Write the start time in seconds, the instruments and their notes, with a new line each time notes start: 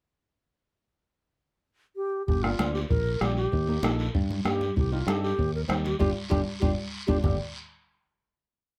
1.96 alto flute G4
2.26 fingered electric bass G1, alto flute G4, bombo low, high conga, long guiro
2.43 nylon-string guitar A#3 D4 G4, alto flute F4, bombo rim
2.59 fingered electric bass D2, nylon-string guitar A#3 D4 F4, bombo rim, high conga, short guiro
2.74 alto flute G4, short guiro
2.89 fingered electric bass A#1, alto flute A#4, bombo low, high conga, long guiro
3.21 fingered electric bass A#1, nylon-string guitar A#3 D4 G4, alto flute G4, bombo rim, high conga, short guiro
3.37 alto flute G4, short guiro
3.52 fingered electric bass D#2, bombo low, high conga, long guiro
3.67 nylon-string guitar A#3 D#4 G4
3.83 fingered electric bass A#1, nylon-string guitar A#3 D#4 A4, bombo rim, high conga, short guiro
3.99 short guiro
4.15 fingered electric bass G2, bombo low, high conga, long guiro
4.31 high conga
4.44 fingered electric bass G2, nylon-string guitar A#3 D#4 G4, alto flute G4, bombo rim, high conga, short guiro
4.61 high conga, short guiro
4.76 fingered electric bass C2, alto flute G4, bombo low, high conga, long guiro
4.92 nylon-string guitar C4 D#4 G4, alto flute F4
5.07 fingered electric bass G2, nylon-string guitar C4 D#4 A4, alto flute G4, bombo rim, high conga, short guiro
5.22 alto flute G4, short guiro
5.39 fingered electric bass D#2, bombo low, high conga, long guiro
5.55 alto flute A#4
5.68 fingered electric bass D#2, nylon-string guitar C4 D#4 G4, alto flute C5, bombo rim, high conga, short guiro
5.85 alto flute G4, high conga, short guiro
5.99 fingered electric bass G1, nylon-string guitar D4 F4 G4, alto flute G4, bombo low, high conga, long guiro
6.30 fingered electric bass G1, nylon-string guitar D4 F4 G4, alto flute G4, bombo low, high conga, long guiro
6.60 fingered electric bass G1, nylon-string guitar D4 F4 G4, alto flute G4, bombo low, high conga, long guiro
7.07 fingered electric bass G1, nylon-string guitar D4 F4 G4, alto flute G4, bombo low, high conga, long guiro
7.22 fingered electric bass G1, nylon-string guitar A#3 D4 G4, alto flute G4, bombo low, low conga, long guiro